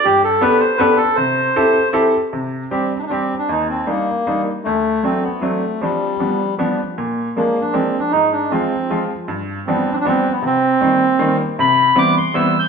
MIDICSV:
0, 0, Header, 1, 3, 480
1, 0, Start_track
1, 0, Key_signature, -3, "minor"
1, 0, Tempo, 377121
1, 66, Time_signature, 3, 2, 24, 8
1, 2466, Tempo, 387597
1, 10146, Tempo, 382409
1, 15852, End_track
2, 0, Start_track
2, 0, Title_t, "Bandoneon"
2, 0, Program_c, 0, 23
2, 61, Note_on_c, 0, 67, 96
2, 286, Note_off_c, 0, 67, 0
2, 307, Note_on_c, 0, 69, 69
2, 525, Note_on_c, 0, 71, 87
2, 550, Note_off_c, 0, 69, 0
2, 757, Note_off_c, 0, 71, 0
2, 766, Note_on_c, 0, 72, 76
2, 987, Note_on_c, 0, 71, 93
2, 1020, Note_off_c, 0, 72, 0
2, 1222, Note_on_c, 0, 69, 77
2, 1252, Note_off_c, 0, 71, 0
2, 1471, Note_on_c, 0, 72, 89
2, 1488, Note_off_c, 0, 69, 0
2, 2402, Note_off_c, 0, 72, 0
2, 3428, Note_on_c, 0, 60, 65
2, 3760, Note_off_c, 0, 60, 0
2, 3764, Note_on_c, 0, 62, 62
2, 3800, Note_off_c, 0, 62, 0
2, 3806, Note_on_c, 0, 63, 50
2, 3839, Note_off_c, 0, 63, 0
2, 3860, Note_on_c, 0, 62, 60
2, 3928, Note_off_c, 0, 62, 0
2, 3931, Note_on_c, 0, 60, 75
2, 4220, Note_off_c, 0, 60, 0
2, 4259, Note_on_c, 0, 62, 71
2, 4409, Note_off_c, 0, 62, 0
2, 4411, Note_on_c, 0, 63, 76
2, 4626, Note_off_c, 0, 63, 0
2, 4649, Note_on_c, 0, 60, 55
2, 4862, Note_off_c, 0, 60, 0
2, 4884, Note_on_c, 0, 58, 73
2, 5543, Note_off_c, 0, 58, 0
2, 5817, Note_on_c, 0, 57, 93
2, 6311, Note_off_c, 0, 57, 0
2, 6311, Note_on_c, 0, 60, 67
2, 6539, Note_on_c, 0, 59, 64
2, 6552, Note_off_c, 0, 60, 0
2, 6768, Note_on_c, 0, 57, 66
2, 6784, Note_off_c, 0, 59, 0
2, 7264, Note_off_c, 0, 57, 0
2, 7273, Note_on_c, 0, 55, 73
2, 8176, Note_off_c, 0, 55, 0
2, 9189, Note_on_c, 0, 58, 65
2, 9492, Note_on_c, 0, 62, 56
2, 9517, Note_off_c, 0, 58, 0
2, 9637, Note_on_c, 0, 60, 75
2, 9664, Note_off_c, 0, 62, 0
2, 9967, Note_on_c, 0, 62, 68
2, 9982, Note_off_c, 0, 60, 0
2, 10116, Note_on_c, 0, 63, 92
2, 10124, Note_off_c, 0, 62, 0
2, 10374, Note_on_c, 0, 62, 62
2, 10381, Note_off_c, 0, 63, 0
2, 10600, Note_on_c, 0, 60, 67
2, 10629, Note_off_c, 0, 62, 0
2, 11288, Note_off_c, 0, 60, 0
2, 12061, Note_on_c, 0, 60, 71
2, 12385, Note_on_c, 0, 62, 69
2, 12394, Note_off_c, 0, 60, 0
2, 12417, Note_on_c, 0, 60, 59
2, 12428, Note_off_c, 0, 62, 0
2, 12462, Note_off_c, 0, 60, 0
2, 12485, Note_on_c, 0, 62, 83
2, 12557, Note_off_c, 0, 62, 0
2, 12577, Note_on_c, 0, 60, 90
2, 12880, Note_on_c, 0, 59, 75
2, 12889, Note_off_c, 0, 60, 0
2, 13037, Note_off_c, 0, 59, 0
2, 13056, Note_on_c, 0, 60, 99
2, 14206, Note_off_c, 0, 60, 0
2, 14490, Note_on_c, 0, 83, 102
2, 14969, Note_on_c, 0, 86, 93
2, 14976, Note_off_c, 0, 83, 0
2, 15186, Note_off_c, 0, 86, 0
2, 15208, Note_on_c, 0, 84, 79
2, 15433, Note_on_c, 0, 88, 92
2, 15445, Note_off_c, 0, 84, 0
2, 15735, Note_on_c, 0, 91, 93
2, 15757, Note_off_c, 0, 88, 0
2, 15852, Note_off_c, 0, 91, 0
2, 15852, End_track
3, 0, Start_track
3, 0, Title_t, "Upright piano"
3, 0, Program_c, 1, 0
3, 69, Note_on_c, 1, 43, 49
3, 423, Note_off_c, 1, 43, 0
3, 525, Note_on_c, 1, 59, 68
3, 530, Note_on_c, 1, 62, 47
3, 533, Note_on_c, 1, 67, 54
3, 538, Note_on_c, 1, 69, 59
3, 774, Note_off_c, 1, 59, 0
3, 777, Note_off_c, 1, 62, 0
3, 778, Note_off_c, 1, 67, 0
3, 780, Note_off_c, 1, 69, 0
3, 1007, Note_on_c, 1, 59, 60
3, 1018, Note_on_c, 1, 67, 57
3, 1020, Note_on_c, 1, 62, 59
3, 1022, Note_on_c, 1, 69, 70
3, 1255, Note_off_c, 1, 59, 0
3, 1260, Note_off_c, 1, 67, 0
3, 1261, Note_off_c, 1, 62, 0
3, 1262, Note_off_c, 1, 69, 0
3, 1494, Note_on_c, 1, 48, 51
3, 1855, Note_off_c, 1, 48, 0
3, 1984, Note_on_c, 1, 60, 56
3, 1988, Note_on_c, 1, 64, 55
3, 1988, Note_on_c, 1, 69, 66
3, 1992, Note_on_c, 1, 67, 51
3, 2225, Note_off_c, 1, 60, 0
3, 2227, Note_off_c, 1, 64, 0
3, 2227, Note_off_c, 1, 69, 0
3, 2229, Note_off_c, 1, 67, 0
3, 2455, Note_on_c, 1, 60, 67
3, 2457, Note_on_c, 1, 64, 60
3, 2460, Note_on_c, 1, 67, 65
3, 2466, Note_on_c, 1, 69, 76
3, 2703, Note_off_c, 1, 60, 0
3, 2704, Note_off_c, 1, 64, 0
3, 2705, Note_off_c, 1, 67, 0
3, 2708, Note_off_c, 1, 69, 0
3, 2951, Note_on_c, 1, 48, 47
3, 3309, Note_off_c, 1, 48, 0
3, 3424, Note_on_c, 1, 60, 40
3, 3426, Note_on_c, 1, 55, 41
3, 3427, Note_on_c, 1, 67, 50
3, 3428, Note_on_c, 1, 62, 39
3, 3670, Note_off_c, 1, 60, 0
3, 3671, Note_off_c, 1, 55, 0
3, 3671, Note_off_c, 1, 67, 0
3, 3672, Note_off_c, 1, 62, 0
3, 3907, Note_on_c, 1, 55, 43
3, 3911, Note_on_c, 1, 60, 39
3, 3917, Note_on_c, 1, 62, 41
3, 3922, Note_on_c, 1, 67, 50
3, 4151, Note_off_c, 1, 55, 0
3, 4153, Note_off_c, 1, 60, 0
3, 4156, Note_off_c, 1, 62, 0
3, 4158, Note_off_c, 1, 67, 0
3, 4388, Note_on_c, 1, 39, 48
3, 4746, Note_off_c, 1, 39, 0
3, 4858, Note_on_c, 1, 55, 43
3, 4861, Note_on_c, 1, 58, 42
3, 4861, Note_on_c, 1, 63, 49
3, 4865, Note_on_c, 1, 62, 42
3, 5103, Note_off_c, 1, 55, 0
3, 5105, Note_off_c, 1, 58, 0
3, 5105, Note_off_c, 1, 63, 0
3, 5107, Note_off_c, 1, 62, 0
3, 5355, Note_on_c, 1, 58, 44
3, 5355, Note_on_c, 1, 63, 51
3, 5357, Note_on_c, 1, 55, 44
3, 5361, Note_on_c, 1, 62, 45
3, 5590, Note_off_c, 1, 58, 0
3, 5590, Note_off_c, 1, 63, 0
3, 5591, Note_off_c, 1, 55, 0
3, 5593, Note_off_c, 1, 62, 0
3, 5839, Note_on_c, 1, 38, 44
3, 6187, Note_off_c, 1, 38, 0
3, 6298, Note_on_c, 1, 57, 46
3, 6302, Note_on_c, 1, 60, 40
3, 6303, Note_on_c, 1, 54, 46
3, 6306, Note_on_c, 1, 62, 46
3, 6538, Note_off_c, 1, 57, 0
3, 6541, Note_off_c, 1, 54, 0
3, 6541, Note_off_c, 1, 60, 0
3, 6542, Note_off_c, 1, 62, 0
3, 6771, Note_on_c, 1, 54, 48
3, 6775, Note_on_c, 1, 57, 43
3, 6786, Note_on_c, 1, 60, 49
3, 6787, Note_on_c, 1, 62, 53
3, 7014, Note_off_c, 1, 54, 0
3, 7016, Note_off_c, 1, 57, 0
3, 7021, Note_off_c, 1, 60, 0
3, 7022, Note_off_c, 1, 62, 0
3, 7266, Note_on_c, 1, 55, 39
3, 7268, Note_on_c, 1, 53, 47
3, 7273, Note_on_c, 1, 60, 40
3, 7283, Note_on_c, 1, 62, 54
3, 7643, Note_off_c, 1, 55, 0
3, 7644, Note_off_c, 1, 53, 0
3, 7647, Note_off_c, 1, 60, 0
3, 7652, Note_off_c, 1, 62, 0
3, 7738, Note_on_c, 1, 53, 46
3, 7747, Note_on_c, 1, 59, 42
3, 7748, Note_on_c, 1, 55, 39
3, 7750, Note_on_c, 1, 62, 48
3, 7978, Note_off_c, 1, 53, 0
3, 7983, Note_off_c, 1, 55, 0
3, 7983, Note_off_c, 1, 59, 0
3, 7984, Note_off_c, 1, 62, 0
3, 8222, Note_on_c, 1, 55, 41
3, 8224, Note_on_c, 1, 53, 52
3, 8230, Note_on_c, 1, 59, 53
3, 8232, Note_on_c, 1, 62, 61
3, 8462, Note_off_c, 1, 55, 0
3, 8463, Note_off_c, 1, 53, 0
3, 8466, Note_off_c, 1, 59, 0
3, 8467, Note_off_c, 1, 62, 0
3, 8710, Note_on_c, 1, 46, 57
3, 9065, Note_off_c, 1, 46, 0
3, 9187, Note_on_c, 1, 56, 43
3, 9190, Note_on_c, 1, 53, 40
3, 9194, Note_on_c, 1, 58, 46
3, 9200, Note_on_c, 1, 62, 45
3, 9427, Note_off_c, 1, 56, 0
3, 9429, Note_off_c, 1, 53, 0
3, 9430, Note_off_c, 1, 58, 0
3, 9433, Note_off_c, 1, 62, 0
3, 9647, Note_on_c, 1, 53, 48
3, 9650, Note_on_c, 1, 62, 53
3, 9652, Note_on_c, 1, 56, 40
3, 9660, Note_on_c, 1, 58, 41
3, 9899, Note_off_c, 1, 53, 0
3, 9900, Note_off_c, 1, 62, 0
3, 9901, Note_off_c, 1, 56, 0
3, 9905, Note_off_c, 1, 58, 0
3, 10140, Note_on_c, 1, 44, 50
3, 10503, Note_off_c, 1, 44, 0
3, 10619, Note_on_c, 1, 53, 48
3, 10623, Note_on_c, 1, 60, 39
3, 10626, Note_on_c, 1, 56, 46
3, 10629, Note_on_c, 1, 65, 54
3, 10866, Note_off_c, 1, 53, 0
3, 10868, Note_off_c, 1, 60, 0
3, 10870, Note_off_c, 1, 56, 0
3, 10871, Note_off_c, 1, 65, 0
3, 11102, Note_on_c, 1, 60, 42
3, 11104, Note_on_c, 1, 56, 42
3, 11105, Note_on_c, 1, 53, 50
3, 11110, Note_on_c, 1, 65, 56
3, 11349, Note_off_c, 1, 56, 0
3, 11349, Note_off_c, 1, 60, 0
3, 11350, Note_off_c, 1, 53, 0
3, 11352, Note_off_c, 1, 65, 0
3, 11579, Note_on_c, 1, 43, 58
3, 11940, Note_off_c, 1, 43, 0
3, 12078, Note_on_c, 1, 53, 52
3, 12078, Note_on_c, 1, 55, 46
3, 12086, Note_on_c, 1, 59, 47
3, 12090, Note_on_c, 1, 62, 57
3, 12314, Note_off_c, 1, 53, 0
3, 12314, Note_off_c, 1, 55, 0
3, 12318, Note_off_c, 1, 59, 0
3, 12320, Note_off_c, 1, 62, 0
3, 12547, Note_on_c, 1, 53, 46
3, 12549, Note_on_c, 1, 55, 49
3, 12561, Note_on_c, 1, 59, 53
3, 12565, Note_on_c, 1, 62, 61
3, 12787, Note_off_c, 1, 53, 0
3, 12788, Note_off_c, 1, 55, 0
3, 12794, Note_off_c, 1, 59, 0
3, 12796, Note_off_c, 1, 62, 0
3, 13013, Note_on_c, 1, 48, 47
3, 13378, Note_off_c, 1, 48, 0
3, 13497, Note_on_c, 1, 55, 49
3, 13500, Note_on_c, 1, 58, 46
3, 13500, Note_on_c, 1, 60, 59
3, 13501, Note_on_c, 1, 51, 44
3, 13747, Note_off_c, 1, 55, 0
3, 13748, Note_off_c, 1, 58, 0
3, 13748, Note_off_c, 1, 60, 0
3, 13749, Note_off_c, 1, 51, 0
3, 13975, Note_on_c, 1, 51, 59
3, 13981, Note_on_c, 1, 55, 48
3, 13981, Note_on_c, 1, 60, 77
3, 13986, Note_on_c, 1, 58, 50
3, 14230, Note_off_c, 1, 51, 0
3, 14233, Note_off_c, 1, 55, 0
3, 14233, Note_off_c, 1, 60, 0
3, 14235, Note_off_c, 1, 58, 0
3, 14478, Note_on_c, 1, 48, 60
3, 14835, Note_off_c, 1, 48, 0
3, 14936, Note_on_c, 1, 52, 50
3, 14937, Note_on_c, 1, 60, 73
3, 14939, Note_on_c, 1, 55, 52
3, 14941, Note_on_c, 1, 59, 54
3, 15186, Note_off_c, 1, 52, 0
3, 15186, Note_off_c, 1, 60, 0
3, 15187, Note_off_c, 1, 55, 0
3, 15188, Note_off_c, 1, 59, 0
3, 15421, Note_on_c, 1, 55, 52
3, 15427, Note_on_c, 1, 52, 60
3, 15428, Note_on_c, 1, 60, 64
3, 15434, Note_on_c, 1, 59, 57
3, 15664, Note_off_c, 1, 55, 0
3, 15668, Note_off_c, 1, 52, 0
3, 15668, Note_off_c, 1, 60, 0
3, 15671, Note_off_c, 1, 59, 0
3, 15852, End_track
0, 0, End_of_file